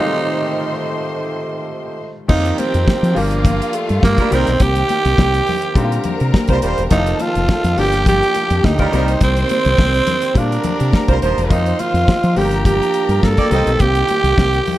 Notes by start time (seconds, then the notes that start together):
Already playing: D#3 A3 C4 D#4 F4 G4 C5 D#5 C6
0.00 G3 G#3 C4 F4 A4
0.06 A3
2.28 F2 D#3 F3 A#3 C4 D#4 F4 G4 G5, kick, crash, muted conga
2.32 C4 A#4
2.45 closed hi-hat
2.58 C4, closed hi-hat, muted conga
2.74 F2, closed hi-hat
2.88 kick, snare, high conga
3.03 F3, closed hi-hat
3.14 G1 F3 G3 A#3 D4 F4 G4 F5, open hi-hat
3.31 closed hi-hat
3.45 kick, closed hi-hat, muted conga, low conga
3.62 closed hi-hat
3.73 A3, closed hi-hat
3.89 G2, closed hi-hat
4.02 G2 A#3, kick, snare, high conga
4.18 G3 F4 A#4, kick, closed hi-hat, high conga
4.30 C2 D#3 G3 A#3 C4 D#4 G4 A#4 G5, closed hi-hat
4.34 G4
4.47 B1, closed hi-hat
4.60 C2 G4, kick, closed hi-hat, muted conga
4.75 closed hi-hat
4.89 closed hi-hat, muted conga
5.05 C2, closed hi-hat
5.18 C2, kick, snare, high conga
5.34 closed hi-hat
5.47 open hi-hat, low conga
5.62 closed hi-hat
5.75 A#2 D3 G3 A#3 C4 D#4 A#4 A#5, kick, closed hi-hat, muted conga
5.84 F4
5.92 closed hi-hat
6.04 closed hi-hat, low conga
6.20 C3, closed hi-hat
6.33 kick, snare, high conga
6.47 C2 G3 F4 C5, kick, closed hi-hat, high conga
6.62 D#1 G3 F4 C5, closed hi-hat
6.78 E1, closed hi-hat
6.91 F1 D#3 F3 A#3 C4 D#4 E4 F4 A4 A5, kick, closed hi-hat, muted conga
6.99 F4
7.07 closed hi-hat
7.19 F4, closed hi-hat, muted conga
7.35 F1, closed hi-hat
7.49 kick, snare, high conga
7.64 F2, closed hi-hat
7.77 G1 F3 G3 A3 D4 G4 G5, open hi-hat
7.85 A#3
7.92 snare, closed hi-hat
8.06 G4, kick, closed hi-hat, muted conga, low conga
8.23 closed hi-hat
8.35 closed hi-hat, muted conga
8.50 F2, closed hi-hat
8.64 D2 D#4, kick, snare, high conga
8.78 G3 F4 A#4, kick, closed hi-hat, high conga
8.91 C2 D#3 G3 A#3 C4 D#4 G4 A#4 C5 C6, closed hi-hat
9.08 closed hi-hat
9.21 C2 C4, kick, closed hi-hat, muted conga
9.37 closed hi-hat
9.49 closed hi-hat, muted conga
9.65 C2, closed hi-hat
9.78 C2, kick, snare, high conga
9.94 closed hi-hat
10.07 closed hi-hat, low conga
10.22 snare, closed hi-hat
10.34 A#2 D3 G3 A#3 C4 D4 F4 G4 A#4 A#5, kick, closed hi-hat, muted conga
10.52 closed hi-hat
10.64 closed hi-hat, muted conga, low conga
10.80 C3, closed hi-hat
10.93 kick, snare, high conga
11.08 C2 G3 F4 C5, kick, closed hi-hat, high conga
11.21 D#1 F3 D#4 C5, closed hi-hat
11.37 E1, closed hi-hat
11.50 F2 D#3 F3 A#3 C4 D#4 F4 C5 C6, kick, closed hi-hat, muted conga
11.66 closed hi-hat
11.79 F4, closed hi-hat, muted conga
11.94 F2, closed hi-hat
12.08 kick, snare, high conga
12.23 F3, closed hi-hat
12.36 G1 F3 G3 A3 D4 G4 A#4 A#5, open hi-hat
12.44 A#3
12.51 snare, closed hi-hat
12.65 G4, kick, closed hi-hat, muted conga, low conga
12.83 closed hi-hat
12.94 closed hi-hat
13.09 G2, closed hi-hat
13.23 G2 A4, kick, snare, high conga
13.37 A#3 G4 D5, kick, closed hi-hat, high conga
13.50 C2 D#3 G3 A#3 C4 G4 A#4 D#5 G5, closed hi-hat
13.66 B1, closed hi-hat
13.80 C2 G4, kick, closed hi-hat, muted conga
13.95 closed hi-hat
14.08 closed hi-hat, muted conga
14.24 C2, closed hi-hat
14.38 C2, kick, snare, high conga
14.53 closed hi-hat
14.66 open hi-hat, low conga